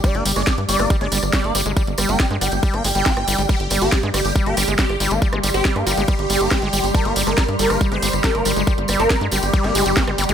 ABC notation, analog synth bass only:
X:1
M:4/4
L:1/16
Q:1/4=139
K:Gm
V:1 name="Analog synth bass" clef=bass
z G,,, G,,, G,,, z G,, G,,, G,,, z G,,, G,,, G,,, z G,,, G,,, G,,, | z G,,, G,,, G,,, z G,, G,,, G,,, z G,,, G,,, G,,, z G,,, G,,, G,,, | z G,,, G,,, G,,, z G,, G,,, G,,, z G,,, G,,, G,,, z G,,, G,,, G,,, | z G,,, G,,, G,,, z G,, G,,, G,,, z G,,, G,,, G,,, z G,,, G,,, G,,, |
z G,,, G,,, G,,, z G,, G,,, G,,, z G,,, G,,, G,,, z G,,, G,,, G,,, | z G,,, G,,, G,,, z G,, G,,, G,,, z G,,, G,,, G,,, z G,,, G,,, G,,, |]